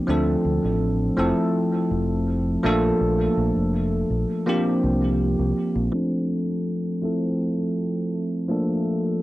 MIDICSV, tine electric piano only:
0, 0, Header, 1, 2, 480
1, 0, Start_track
1, 0, Key_signature, -1, "major"
1, 0, Tempo, 731707
1, 55, Time_signature, 4, 2, 24, 8
1, 6050, End_track
2, 0, Start_track
2, 0, Title_t, "Tine electric piano"
2, 0, Program_c, 0, 4
2, 0, Control_c, 0, 64, 127
2, 0, Note_on_c, 0, 53, 78
2, 0, Note_on_c, 0, 60, 73
2, 0, Note_on_c, 0, 62, 77
2, 46, Note_off_c, 0, 53, 0
2, 46, Note_on_c, 0, 53, 77
2, 51, Note_on_c, 0, 57, 71
2, 56, Note_off_c, 0, 60, 0
2, 56, Note_on_c, 0, 60, 70
2, 61, Note_off_c, 0, 62, 0
2, 61, Note_on_c, 0, 62, 75
2, 64, Control_c, 0, 64, 0
2, 66, Note_on_c, 0, 69, 90
2, 199, Control_c, 0, 64, 127
2, 724, Note_off_c, 0, 53, 0
2, 727, Note_off_c, 0, 57, 0
2, 729, Note_off_c, 0, 60, 0
2, 732, Note_off_c, 0, 62, 0
2, 734, Note_off_c, 0, 69, 0
2, 764, Note_on_c, 0, 53, 80
2, 769, Note_on_c, 0, 57, 74
2, 774, Note_on_c, 0, 60, 74
2, 780, Note_on_c, 0, 64, 74
2, 782, Control_c, 0, 64, 0
2, 783, Note_on_c, 0, 69, 89
2, 898, Control_c, 0, 64, 127
2, 1683, Note_off_c, 0, 53, 0
2, 1686, Note_off_c, 0, 57, 0
2, 1688, Note_off_c, 0, 60, 0
2, 1691, Note_off_c, 0, 64, 0
2, 1693, Note_off_c, 0, 69, 0
2, 1727, Note_on_c, 0, 53, 92
2, 1732, Note_on_c, 0, 57, 86
2, 1737, Note_on_c, 0, 58, 86
2, 1742, Note_on_c, 0, 62, 85
2, 1743, Control_c, 0, 64, 0
2, 1747, Note_on_c, 0, 69, 104
2, 1860, Control_c, 0, 64, 127
2, 2885, Note_off_c, 0, 53, 0
2, 2887, Note_off_c, 0, 57, 0
2, 2890, Note_off_c, 0, 58, 0
2, 2892, Note_off_c, 0, 62, 0
2, 2894, Note_off_c, 0, 69, 0
2, 2926, Note_on_c, 0, 53, 80
2, 2931, Note_on_c, 0, 58, 75
2, 2936, Note_on_c, 0, 60, 75
2, 2942, Note_on_c, 0, 62, 75
2, 2944, Control_c, 0, 64, 0
2, 2946, Note_on_c, 0, 67, 92
2, 3044, Control_c, 0, 64, 127
2, 3844, Note_off_c, 0, 53, 0
2, 3847, Note_off_c, 0, 58, 0
2, 3849, Note_off_c, 0, 60, 0
2, 3852, Note_off_c, 0, 62, 0
2, 3854, Note_off_c, 0, 67, 0
2, 3884, Note_on_c, 0, 53, 73
2, 3889, Note_on_c, 0, 57, 66
2, 3894, Note_on_c, 0, 60, 69
2, 3898, Note_on_c, 0, 62, 66
2, 3903, Control_c, 0, 64, 0
2, 3903, Note_on_c, 0, 69, 83
2, 4020, Control_c, 0, 64, 127
2, 4563, Note_off_c, 0, 53, 0
2, 4566, Note_off_c, 0, 57, 0
2, 4568, Note_off_c, 0, 60, 0
2, 4570, Note_off_c, 0, 62, 0
2, 4573, Note_off_c, 0, 69, 0
2, 4605, Note_on_c, 0, 53, 72
2, 4610, Note_on_c, 0, 57, 68
2, 4614, Note_on_c, 0, 60, 67
2, 4620, Note_on_c, 0, 64, 63
2, 4624, Control_c, 0, 64, 0
2, 4624, Note_on_c, 0, 69, 80
2, 4740, Control_c, 0, 64, 127
2, 5524, Note_off_c, 0, 53, 0
2, 5526, Note_off_c, 0, 57, 0
2, 5528, Note_off_c, 0, 60, 0
2, 5531, Note_off_c, 0, 64, 0
2, 5533, Note_off_c, 0, 69, 0
2, 5564, Note_on_c, 0, 53, 81
2, 5569, Note_on_c, 0, 57, 80
2, 5574, Note_on_c, 0, 58, 82
2, 5580, Note_on_c, 0, 62, 78
2, 5584, Control_c, 0, 64, 0
2, 5585, Note_on_c, 0, 69, 98
2, 5684, Control_c, 0, 64, 127
2, 6050, Note_off_c, 0, 53, 0
2, 6050, Note_off_c, 0, 57, 0
2, 6050, Note_off_c, 0, 58, 0
2, 6050, Note_off_c, 0, 62, 0
2, 6050, Note_off_c, 0, 69, 0
2, 6050, End_track
0, 0, End_of_file